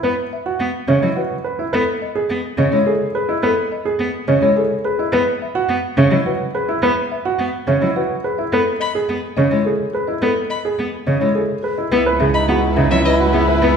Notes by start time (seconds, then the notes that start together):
0.03 B3 B4
0.33 E5
0.46 F#4
0.60 B3
0.88 C#3 C#4 E5
1.02 F#3 E4 D#5
1.16 F#4 B4
1.44 B4
1.59 E4 E5
1.73 B3 A4 B4
2.02 D#5
2.15 G#4
2.30 B3
2.58 C#3 C#4 D#5
2.72 G#3 E4 C#5
2.87 G#4 A4
3.15 G#4 B4
3.29 E4 D#5
3.43 B3 A4 B4
3.72 D#5
3.85 G#4
3.99 B3
4.28 C#3 C#4 D#5
4.42 G#3 E4 C#5
4.56 G#4 A4
4.85 G#4 B4
4.99 E4 D#5
5.12 B3 B4
5.42 E5
5.55 F#4
5.69 B3
5.97 C#3 C#4 E5
6.11 F#3 E4 D#5
6.26 F#4 B4
6.55 G#4 B4
6.69 E4 E5
6.82 B3 B4
7.12 E5
7.25 F#4
7.39 B3
7.68 C#3 C#4 E5
7.82 F#3 E4 D#5
7.96 F#4 B4
8.24 G#4 B4
8.38 E4 E5
8.53 B3 A4 B4
8.80 D#5 B5
8.95 G#4
9.09 B3
9.37 C#3 C#4 D#5
9.51 G#3 E4 C#5
9.65 G#4 A4
9.94 G#4 B4
10.08 E4 D#5
10.22 B3 A4 B4
10.50 D#5 B5
10.65 G#4
10.79 B3
11.07 C#3 C#4 D#5
11.21 G#3 E4 C#5
11.35 G#4 A4
11.63 G#4 B4
11.78 E4 D#5
11.92 C#2 B3 E4 B4
12.06 B4
12.20 C#3 G#4 E5
12.34 D#4 D#5 B5
12.48 B3 F#4 G#4
12.76 C#3 D#4 E5
12.91 F#3 C#4 D#5 E5
13.05 E4 B4 D#5
13.20 F#4
13.33 B3 G#4
13.48 B4 E5
13.62 B3 E4 B4